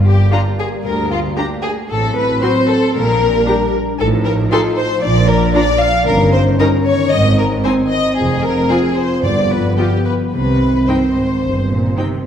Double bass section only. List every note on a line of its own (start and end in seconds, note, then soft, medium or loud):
0.00 0.23 G1 medium
0.85 1.29 D2 soft
1.90 2.34 A1 medium
2.95 3.38 A#1 medium
3.99 4.43 A1 medium
5.03 5.47 A#1 medium
6.07 6.51 G1 medium
7.12 7.56 G#1 medium
8.17 8.61 F1 medium
9.24 9.69 G1 soft
10.33 10.79 C2 soft
11.43 11.88 G1 soft